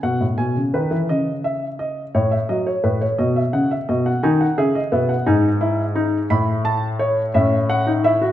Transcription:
0.03 0.20 B2 medium
0.03 0.25 F#5 medium
0.20 0.38 A2 medium
0.38 0.55 B2 medium
0.38 0.60 G#5 medium
0.56 0.73 C#3 medium
0.74 0.91 D#3 medium
0.74 0.96 B4 medium
0.91 1.08 E3 medium
1.09 2.11 C#3 medium
1.09 1.31 D#5 medium
1.44 1.66 E5 medium
1.79 2.01 D#5 medium
2.15 2.36 A2 medium
2.15 2.31 C#5 medium
2.31 2.48 E5 medium
2.49 2.71 F#3 medium
2.49 2.66 D#5 medium
2.67 2.84 C#5 medium
2.83 3.05 A2 medium
2.83 3.01 B4 medium
3.01 3.19 C#5 medium
3.18 3.41 B2 medium
3.18 3.36 D#5 medium
3.36 3.53 E5 medium
3.53 3.75 C#3 medium
3.53 3.71 F#5 medium
3.71 3.88 E5 medium
3.89 4.11 B2 medium
3.89 4.06 D#5 medium
4.06 4.23 F#5 medium
4.23 4.45 D#3 medium
4.23 4.45 D#4 medium
4.23 4.40 G#5 medium
4.41 4.58 F#5 medium
4.58 4.79 C#3 medium
4.58 4.79 G#4 medium
4.58 4.75 E5 medium
4.75 4.92 D#5 medium
4.92 5.14 B2 medium
4.92 5.13 B3 medium
4.92 5.09 E5 medium
5.09 5.26 F#5 medium
5.26 6.27 G#2 medium
5.26 5.48 D#4 medium
5.26 6.27 G#5 medium
5.61 5.82 E4 medium
5.96 6.17 D#4 medium
6.30 7.32 A2 medium
6.30 7.31 E4 medium
6.30 6.52 B5 medium
6.65 6.87 A5 medium
6.99 7.21 C#5 medium
7.34 8.32 A2 medium
7.34 7.85 C#4 medium
7.34 7.56 E5 medium
7.70 7.91 F#5 medium
7.87 8.04 D#4 medium
8.04 8.21 E4 medium
8.04 8.26 E5 medium
8.22 8.32 F#4 medium

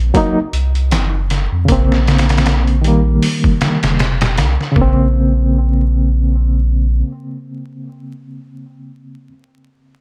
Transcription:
0.00 0.11 A#1 loud
0.14 0.37 F#3 medium
0.14 0.38 A#3 medium
0.14 0.39 D#4 loud
0.14 kick loud
0.14 closed hi-hat medium
0.53 0.93 C2 medium
0.53 closed hi-hat medium
0.75 closed hi-hat soft
0.91 1.48 F#1 medium
0.91 snare loud
0.91 closed hi-hat medium
1.30 snare medium
1.30 closed hi-hat medium
1.52 1.67 F2 medium
1.65 3.19 A#1 loud
1.65 2.78 C#3 medium
1.65 2.80 A#3 medium
1.65 kick loud
1.65 closed hi-hat medium
1.72 2.82 C4 medium
1.92 snare medium
2.07 snare medium
2.07 closed hi-hat medium
2.18 snare medium
2.18 closed hi-hat medium
2.29 snare medium
2.29 closed hi-hat medium
2.37 snare medium
2.37 closed hi-hat medium
2.46 snare loud
2.46 closed hi-hat medium
2.67 closed hi-hat soft
2.82 3.96 D#3 medium
2.82 3.98 G3 medium
2.82 closed hi-hat medium
2.88 3.99 A#3 medium
3.23 open hi-hat medium
3.44 kick loud
3.61 snare loud
3.61 closed hi-hat medium
3.83 4.39 F1 medium
3.83 snare loud
3.83 closed hi-hat medium
3.99 snare loud
3.99 closed hi-hat medium
4.21 snare loud
4.21 closed hi-hat medium
4.38 4.57 C2 medium
4.38 snare loud
4.38 closed hi-hat medium
4.61 snare soft
4.72 9.28 C#3 medium
4.76 7.03 A#1 medium
4.76 9.30 A#3 medium
4.76 kick loud
4.82 9.32 C4 medium

